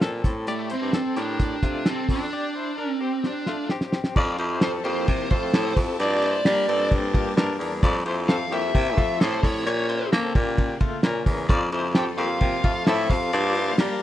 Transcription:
0.01 A#2 C4 A4, snare, closed hi-hat
0.24 A2, kick, closed hi-hat
0.47 A3 G4 D5, closed hi-hat
0.70 C4 E4 C5, closed hi-hat
0.81 G2
0.93 C4 A4, snare, closed hi-hat
1.16 A2 D4 G4 A#4, closed hi-hat
1.40 kick, closed hi-hat
1.63 C3 A3 F4, kick, closed hi-hat
1.86 C4 A4, snare, closed hi-hat
2.09 F2 D4, kick, open hi-hat
2.33 G4 D5
2.55 E4 C5
2.78 D4 A#4
2.92 C4
3.01 C4 G4
3.24 D4, snare
3.46 A3 F4, snare
3.69 C4 G4, snare
3.81 snare
3.92 snare
4.04 snare
4.16 F2 F3 C4 E4 F4 G4 D5 A5, kick, crash
4.38 F2 E4 C5, ride
4.61 C4 A4 C5, snare, ride
4.84 F2 A#3 G4 C5, ride
5.08 C3, kick, ride
5.30 F2 A3 F4 C5, kick, ride
5.54 A2 C4 A4, snare, ride
5.76 F2, kick, open hi-hat, ride
5.99 G2 G3 A#3 D4 F4 D5, hi-hat pedal, ride
6.22 E4 C5 D5, ride
6.45 G3 D4 A#4, snare, ride
6.68 G2 C4 A4, ride
6.92 kick, ride
7.14 A#3 G4, kick, ride
7.36 G2 D4 A#4, snare, ride
7.59 E2, open hi-hat, ride
7.82 F2 F3 E4 F4 G4 D5, kick, hi-hat pedal, ride
8.05 F2 E4 C5, ride
8.28 C4 A4 F5, snare, ride
8.51 F2 A#3 G4 E5, ride
8.74 C3, kick, ride
8.97 F2 A3 F4, kick, ride
9.20 A2 C4 A4 C5, snare, ride
9.43 A2 C#5, kick, open hi-hat, ride
9.66 A#2 C#3 A#3 F4 C#5, hi-hat pedal, ride
9.89 E4 C5, ride
10.12 A#3 C4 A4, snare, ride
10.35 A#2 A#3 G4, kick, ride
10.58 kick, ride
10.81 A3 F4, kick, ride
11.03 A#2 C#4 A#4, snare, ride
11.26 E2, kick, open hi-hat, ride
11.49 F2 F3 F4 G4 D5 A5, kick, hi-hat pedal, ride
11.72 F2 E4 C5, ride
11.95 C4 G4 A4 G5, snare, ride
12.17 F2 A#3 F4 G4 F5, ride
12.41 C3, kick, ride
12.64 F2 A3 F4, kick, ride
12.87 A2 C4 E4 A4 E5, snare, ride
13.10 F2 F4 F5, kick, open hi-hat, ride
13.33 G2 G3 A#3 D4 F4 D5, hi-hat pedal, ride
13.55 E4 C5, ride
13.78 G3 D4 A#4, snare, ride

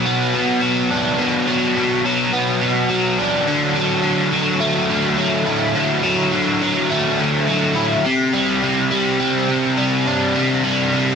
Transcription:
Already playing: B2 F#3
0.05 B3
0.34 B2
0.61 F#3
0.91 D4
1.19 B2
1.47 F#3
1.76 B2
2.05 F#3
2.33 B3
2.62 B2
2.89 F#3
3.18 D4
3.47 D3
3.75 F#3
4.03 D3
4.32 F#3
4.60 A3
4.89 D3
5.18 F#3
5.46 E4
5.75 D3
6.03 F#3
6.32 D3
6.62 F#3
6.90 A3
7.19 D3
7.47 F#3
7.75 E4
8.05 C3
8.33 G3
8.63 C3
8.91 G3
9.20 C4
9.48 C3
9.77 G3
10.06 D4
10.35 C3
10.64 G3
10.92 C3

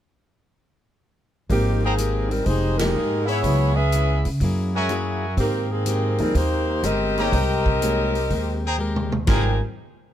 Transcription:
1.49 G#1 D#3 F3 G#3 A#3 C4 D#4 G4, kick, open hi-hat
1.54 A#4
1.83 D#3 A#3 C4 G#4 C5 G5 A#5
1.98 G#3 C4 G4 A#4, closed hi-hat
2.28 G3 C4 D#4 A#4, open hi-hat
2.44 F1 F3 G#3 D#4 G4 C5, kick, open hi-hat
2.48 A#3 D#4 G#4
2.76 F3 G#3 D#4 G4 A#4, snare, ride
2.81 A#3 D#4 G4
2.96 G#2 F3 A#3 D#4 G#4
3.26 B3 E4 G#4 B4 C#5 E5, open hi-hat
3.43 C#2 C#3 F#3 G#3 B3 E4 G#4, kick, open hi-hat
3.48 E4
3.74 C#4 G#4 B4 E5
3.92 C#3 G#3 B3 E4, closed hi-hat
4.25 C#3, open hi-hat
4.40 F#2 F#3 A#3 E4, kick, open hi-hat
4.44 G#4
4.74 G#3 C#4 F#4 A#4 C#5 E5 G#5
4.89 F#3 A#3 E4 G#4, cross-stick, closed hi-hat
5.37 G#2 D#3 G#3 A#3 C4 G4, kick, open hi-hat
5.41 A#4
5.70 D#3 A#3 C4 G#4
5.86 G#3 C4 G4 A#4, closed hi-hat
6.18 D#2 F3 G3 A#3 C4 D#4 G#4 A#4, open hi-hat
6.34 D#2 G#3 A#3 C4 D#4 G4 A#4 C5, kick, open hi-hat
6.83 G1 G#3 C4 G4 A#4 D#5, cross-stick, closed hi-hat
7.17 A#3 D#4 G4 G#4 C5 C#5 G5 A#5, open hi-hat
7.32 C2 G#3 C4 G4 A#4 D#5, kick, open hi-hat
7.66 kick
7.80 G#3 A#3 C4 D#4 G4 G#4 A#4 C#5, closed hi-hat
8.15 open hi-hat
8.30 D#2 G#3 C4 G4 A#4, kick, open hi-hat
8.65 G#4 C5 G5 A#5
8.78 G#3 C4 G4 A#4
8.96 mid tom
9.12 mid tom
9.27 G#1 G3 G#3 C4 D#4 F4 G4 G#4 A#4 C5 G5 G#5 A#5, kick, snare, crash
9.31 A#4

